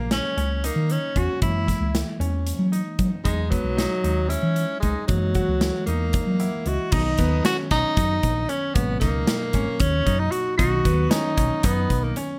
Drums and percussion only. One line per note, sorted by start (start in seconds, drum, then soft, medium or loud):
0.11 snare loud
0.11 closed hi-hat medium
0.38 closed hi-hat medium
0.64 closed hi-hat medium
0.90 closed hi-hat medium
1.16 kick medium
1.16 closed hi-hat medium
1.42 kick medium
1.42 closed hi-hat medium
1.68 kick medium
1.68 snare soft
1.68 closed hi-hat medium
1.95 snare loud
1.95 closed hi-hat medium
2.21 closed hi-hat medium
2.47 closed hi-hat medium
2.73 closed hi-hat medium
2.99 kick medium
2.99 closed hi-hat medium
3.25 kick medium
3.25 closed hi-hat medium
3.52 kick medium
3.52 closed hi-hat medium
3.78 snare loud
3.78 closed hi-hat medium
4.04 closed hi-hat medium
4.30 closed hi-hat medium
4.56 closed hi-hat medium
4.83 kick medium
4.83 closed hi-hat medium
5.08 kick medium
5.08 closed hi-hat medium
5.35 kick medium
5.35 closed hi-hat medium
5.61 snare loud
5.61 closed hi-hat medium
5.87 closed hi-hat medium
6.13 kick loud
6.13 closed hi-hat medium
6.40 closed hi-hat medium
6.66 closed hi-hat medium
6.92 kick loud
6.92 crash medium
7.18 kick medium
7.18 closed hi-hat medium
7.45 snare loud
7.45 closed hi-hat medium
7.71 kick medium
7.71 closed hi-hat medium
7.97 kick loud
7.97 closed hi-hat medium
8.23 kick medium
8.23 closed hi-hat medium
8.49 closed hi-hat medium
8.75 kick loud
8.75 closed hi-hat medium
9.01 kick medium
9.01 snare soft
9.01 closed hi-hat medium
9.27 snare loud
9.27 closed hi-hat medium
9.53 kick medium
9.53 closed hi-hat medium
9.80 kick loud
9.80 closed hi-hat medium
10.07 kick medium
10.07 closed hi-hat medium
10.32 closed hi-hat medium
10.59 kick medium
10.59 closed hi-hat medium
10.85 kick medium
10.85 closed hi-hat medium
11.11 snare loud
11.11 closed hi-hat medium
11.37 kick medium
11.37 closed hi-hat medium
11.63 kick loud
11.63 closed hi-hat medium
11.90 kick medium
11.90 closed hi-hat medium
12.16 closed hi-hat medium